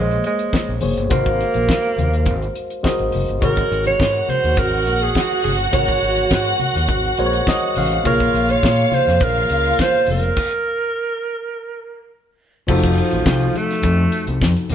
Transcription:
Already playing: fingered electric bass A#1, tine electric piano A#3 G#4 C5 C#5
0.00 alto saxophone G#3
0.11 closed hi-hat
0.24 alto saxophone G#3, closed hi-hat
0.39 closed hi-hat
0.53 kick, snare, muted conga, high conga
0.69 fingered electric bass A#1, muted conga
0.81 fingered electric bass F#1, tine electric piano A#3 G#4 C5 C#5, open hi-hat, low conga
0.97 fingered electric bass G1, closed hi-hat
1.09 fingered electric bass G#1, tine electric piano G#3 F#4 A#4 C5 F5, alto saxophone A#3, kick, closed hi-hat, muted conga, low conga
1.26 kick
1.41 closed hi-hat
1.54 fingered electric bass A#1, closed hi-hat, high conga
1.69 kick, snare, muted conga
1.85 muted conga
1.98 fingered electric bass D#2, closed hi-hat, high conga, low conga
2.14 closed hi-hat
2.26 fingered electric bass G#1, kick, closed hi-hat, muted conga, high conga
2.42 closed hi-hat
2.55 closed hi-hat
2.70 closed hi-hat
2.83 tine electric piano G#3 F#4 A#4 C5 D#5, kick, snare, muted conga, high conga
2.99 fingered electric bass G#1, closed hi-hat
3.12 fingered electric bass F#1, open hi-hat, low conga
3.29 fingered electric bass G1, closed hi-hat
3.40 fingered electric bass G#1, tine electric piano G#3 F#4 A#4 C#5, string section F#4 F#5, kick, closed hi-hat, muted conga, low conga
3.45 alto saxophone A#4
3.57 kick, closed hi-hat, muted conga
3.71 fingered electric bass G#1, closed hi-hat
3.86 alto saxophone C#5, closed hi-hat, high conga
4.00 fingered electric bass G#2, kick, snare
4.16 muted conga
4.29 alto saxophone C5, closed hi-hat, high conga, low conga
4.44 fingered electric bass D#2, closed hi-hat
4.57 fingered electric bass G#1, alto saxophone A#4, kick, closed hi-hat, high conga
4.86 fingered electric bass A#1, closed hi-hat
5.01 alto saxophone G#4, closed hi-hat
5.15 kick, snare, muted conga, high conga
5.30 closed hi-hat, muted conga
5.43 fingered electric bass G1, alto saxophone G#4, open hi-hat, low conga
5.59 closed hi-hat
5.72 fingered electric bass G#1, tine electric piano G#3 F#4 A#4 C#5, alto saxophone C#5, kick, closed hi-hat, muted conga, low conga
5.88 kick, closed hi-hat
6.02 fingered electric bass G#1, closed hi-hat
6.16 closed hi-hat, high conga
6.31 fingered electric bass G#2, kick, snare, muted conga
6.46 closed hi-hat, muted conga
6.60 closed hi-hat, high conga, low conga
6.75 fingered electric bass D#2, snare, closed hi-hat
6.87 fingered electric bass G#1, kick, closed hi-hat, high conga
7.05 muted conga
7.18 fingered electric bass A#1, tine electric piano G#3 F#4 A#4 C5 C#5, closed hi-hat
7.26 tine electric piano C#5
7.33 closed hi-hat
7.47 tine electric piano D#5, kick, snare, muted conga, high conga
7.62 closed hi-hat, muted conga
7.75 fingered electric bass A1, tine electric piano F5, open hi-hat, low conga
7.91 closed hi-hat
8.04 fingered electric bass A#1, tine electric piano A#3 F4 G#4 C#5, string section F4 F5, alto saxophone A#4, kick, closed hi-hat, muted conga, low conga
8.20 kick, closed hi-hat
8.34 fingered electric bass A#1, closed hi-hat
8.49 alto saxophone C#5, closed hi-hat, high conga
8.63 fingered electric bass A#2, kick, snare
8.92 alto saxophone C5, closed hi-hat, high conga, low conga
9.07 fingered electric bass F2, snare, closed hi-hat
9.20 fingered electric bass A#1, string section F4 F5, alto saxophone A#4, kick, closed hi-hat, high conga
9.37 muted conga
9.50 fingered electric bass C#2, closed hi-hat
9.65 closed hi-hat
9.79 alto saxophone C5, kick, snare, muted conga, high conga
9.94 closed hi-hat, muted conga
10.07 fingered electric bass F1, open hi-hat, low conga
10.11 alto saxophone A#4
10.23 closed hi-hat
10.36 kick, crash
12.67 fingered electric bass F1, tine electric piano F3 D#4 F#4 A4, alto saxophone F3, kick, crash, muted conga, low conga
12.84 kick, muted conga
12.98 closed hi-hat
13.11 fingered electric bass A1, closed hi-hat, high conga
13.26 fingered electric bass C2, kick, snare
13.41 closed hi-hat, muted conga
13.55 alto saxophone A3, closed hi-hat, high conga
13.71 snare, closed hi-hat
13.83 fingered electric bass F2, kick, closed hi-hat, high conga
13.99 muted conga
14.12 closed hi-hat
14.27 fingered electric bass C2, closed hi-hat
14.42 fingered electric bass F2, kick, snare, muted conga, high conga
14.57 closed hi-hat, muted conga
14.70 fingered electric bass D#2, alto saxophone A#3, open hi-hat, low conga

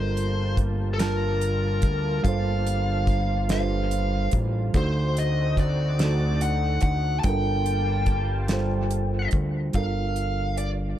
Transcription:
Already playing: analog synth bass G1, reed electric piano G3 D4 F4 A4 A#4, analog synth pad G3 A#3 F4 A5, lead electric guitar C5
0.17 closed hi-hat
0.57 kick, closed hi-hat
0.94 lead electric guitar A4
0.98 reed electric piano G3 D4 F4 A5, lead electric guitar A#4, snare, closed hi-hat
1.03 reed electric piano A#4
1.41 closed hi-hat
1.82 analog synth bass D2, kick, closed hi-hat
2.23 analog synth bass G1, reed electric piano G3 D4 F4 A4, lead electric guitar F5, kick, closed hi-hat
2.28 reed electric piano C5
2.67 closed hi-hat
3.07 kick, closed hi-hat
3.49 reed electric piano G3 D4 F4 A4, lead electric guitar F5, snare, closed hi-hat
3.53 reed electric piano B4
3.60 reed electric piano C5
3.91 closed hi-hat
4.31 analog synth bass A1, kick, closed hi-hat
4.72 analog synth bass D2, reed electric piano D3 A3 D#4 F#4, analog synth pad D3 C4 D#4 F#4, kick, closed hi-hat
4.77 reed electric piano C5, lead electric guitar C5
5.17 lead electric guitar D#5, closed hi-hat
5.57 lead electric guitar D5, kick, closed hi-hat
5.99 reed electric piano D3 A3 D#4 F#4, snare, closed hi-hat
6.04 reed electric piano A4
6.41 lead electric guitar F#5, closed hi-hat
6.81 analog synth bass D2, lead electric guitar F#5, kick, closed hi-hat
7.20 reed electric piano G3, lead electric guitar A5, closed hi-hat
7.24 analog synth bass G1, analog synth pad G3 A#3 F4 A5, reed electric piano D4 F4 A4 A#4, lead electric guitar G5, kick
7.66 closed hi-hat
8.06 kick, closed hi-hat
8.48 reed electric piano G3 D4 F4 A4, snare, closed hi-hat
8.53 reed electric piano C5
8.91 closed hi-hat
9.31 analog synth bass D2, kick, closed hi-hat
9.73 analog synth bass G1, reed electric piano G3 D4 F4, lead electric guitar F5, kick, closed hi-hat
9.77 reed electric piano A4 A#4
10.16 closed hi-hat
10.57 lead electric guitar D5, closed hi-hat

